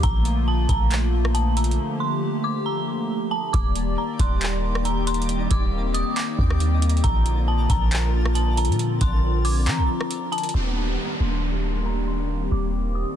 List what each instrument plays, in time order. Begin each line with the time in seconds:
Already playing: analog synth pad A#3
0.03 808-style bass A#1, analog synth pad D3 F3 A3 F4, synth bell A#5, kick, closed hi-hat
0.25 closed hi-hat
0.48 synth bell A5
0.69 808-style bass A#1, synth bell A#5, kick, closed hi-hat
0.91 clap, closed hi-hat
1.25 cross-stick
1.34 synth bell A5, closed hi-hat
1.57 synth bell A#5, closed hi-hat
1.64 closed hi-hat
1.71 closed hi-hat
1.79 analog synth pad G4
2.00 synth bell C6
2.44 synth bell D6
2.66 synth bell A#5
3.31 synth bell A5
3.53 808-style bass D#1, analog synth pad D#3 G3 A#3 G4 D5, synth texture D#4 D5 G5, synth bell D6, kick, closed hi-hat
3.76 closed hi-hat
3.98 synth bell A#5
4.19 808-style bass D#1, synth bell C6, kick, closed hi-hat
4.41 clap, closed hi-hat
4.75 cross-stick
4.85 synth bell A#5, closed hi-hat
5.07 synth bell C6, closed hi-hat
5.14 closed hi-hat
5.22 closed hi-hat
5.29 analog synth pad C4, closed hi-hat
5.51 808-style bass D#1, synth bell D6, kick, closed hi-hat
5.94 synth bell D#6, closed hi-hat
6.17 synth bell D6, clap, closed hi-hat
6.39 808-style bass D#2, kick
6.50 cross-stick
6.60 closed hi-hat
6.82 closed hi-hat
6.89 closed hi-hat
6.97 closed hi-hat
7.04 808-style bass A#1, analog synth pad D3 F3 F4, synth texture D4 A#4 A6, synth bell A#5, kick, closed hi-hat
7.26 closed hi-hat
7.48 synth bell A5
7.70 808-style bass A#1, synth bell A#5, kick, closed hi-hat
7.92 clap, closed hi-hat
8.25 cross-stick
8.35 synth bell A5, closed hi-hat
8.57 synth bell A#5, closed hi-hat
8.65 808-style bass A#2, closed hi-hat
8.72 closed hi-hat
8.79 analog synth pad C4, closed hi-hat
9.01 808-style bass A#1, synth bell C6, kick, closed hi-hat
9.45 synth bell D6, open hi-hat
9.67 808-style bass F3, synth bell A#5, clap, closed hi-hat
9.78 808-style bass A#1
10.01 cross-stick
10.11 closed hi-hat
10.32 synth bell A5, closed hi-hat
10.38 closed hi-hat
10.43 closed hi-hat
10.49 closed hi-hat
10.54 808-style bass D#1, analog synth pad D#3 G3 A#3 D4 G4, synth bell D6, downlifter
10.99 synth bell A#5
11.20 808-style bass D#1, synth bell C6
11.86 synth bell A#5
12.08 synth bell C6
12.30 analog synth pad C4
12.52 808-style bass D#1, synth bell D6
12.95 synth bell D#6